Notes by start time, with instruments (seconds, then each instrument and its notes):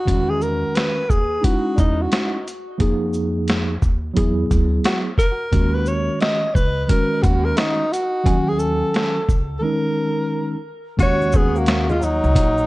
Already playing: alto saxophone F#4
0.05 upright bass E2, tine electric piano D#3 G3 C#4 F#4, kick, closed hi-hat
0.13 tine electric piano G#3
0.30 alto saxophone G#4
0.41 alto saxophone A#4, shaker
0.75 alto saxophone B4, snare, closed hi-hat
1.10 upright bass D#2, alto saxophone G#4, kick, shaker
1.41 tine electric piano G#3 C#4 D#4 E4, alto saxophone F#4, kick, closed hi-hat
1.76 upright bass E2, alto saxophone D4 D#4, kick, closed hi-hat, shaker
2.02 alto saxophone F#4
2.12 snare, closed hi-hat
2.48 closed hi-hat, shaker
2.78 upright bass F2, tine electric piano F3 A#3 D#4 G#4, kick, closed hi-hat
3.13 shaker
3.48 snare, closed hi-hat
3.82 upright bass D#2, kick, shaker
4.13 upright bass E2, tine electric piano F#3 B3 E4 G#4, kick, closed hi-hat
4.51 upright bass D2, kick, closed hi-hat, shaker
4.84 alto saxophone F#4, snare, closed hi-hat
5.18 alto saxophone A#4, kick, closed hi-hat, shaker
5.52 upright bass D#2, tine electric piano D#3 G#3 C#4 F#4, kick, closed hi-hat
5.74 alto saxophone B4
5.86 alto saxophone C#5, shaker
6.21 alto saxophone D#5, snare, closed hi-hat
6.55 upright bass C#2, alto saxophone B4, kick, shaker
6.86 tine electric piano D#3 G#3 C#4, alto saxophone A#4 B4, closed hi-hat
6.90 tine electric piano F#4, kick
7.23 upright bass D#2, alto saxophone F#4, kick, closed hi-hat, shaker
7.45 alto saxophone A#4
7.57 alto saxophone D#4, snare, closed hi-hat
7.92 alto saxophone F#4, closed hi-hat, shaker
8.23 upright bass D#2, tine electric piano D#3 F#3 C#4 G#5, kick, closed hi-hat
8.49 alto saxophone G#4
8.59 alto saxophone A4, shaker
8.94 snare, closed hi-hat
9.28 upright bass C#2, kick, shaker
9.59 tine electric piano D#3 G#3, alto saxophone A4
9.63 tine electric piano C#4 D#4, alto saxophone A#4
10.97 upright bass D#2, tine electric piano D#3 G#3 C#4 F#4, tenor saxophone F#4, kick, closed hi-hat, shaker
11.03 alto saxophone C#5
11.22 high conga, shaker
11.32 tenor saxophone B3, kick, shaker
11.34 alto saxophone G#4, shaker
11.56 tenor saxophone A#3, alto saxophone F#4, shaker
11.66 snare, closed hi-hat, shaker
11.89 tenor saxophone G#3, alto saxophone F4, high conga, shaker
12.00 tenor saxophone F#3, alto saxophone D#4, low conga, shaker
12.24 upright bass C#2, shaker
12.35 upright bass A#1, kick, closed hi-hat, high conga, shaker
12.58 shaker